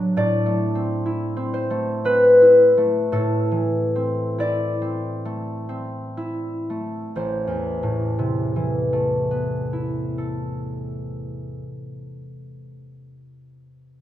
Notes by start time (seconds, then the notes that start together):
Already playing: A2 F#3 B3 D4 F#4 B4 E5
0.17 A2 D5
0.46 A3
0.75 C4
1.06 E4
1.37 C4
1.54 C5
1.70 A3
2.05 C4 B4
2.42 E4
2.77 A3
3.12 A2 A4
3.51 E3
3.96 C4
4.38 E4 D5
4.82 C4
5.25 A3
5.69 C4
6.17 E4
6.70 A3
7.16 A1 C5
7.47 E2
7.83 A2
8.19 C3
8.56 E3
8.93 A3
9.31 B3
9.73 E4
10.18 A4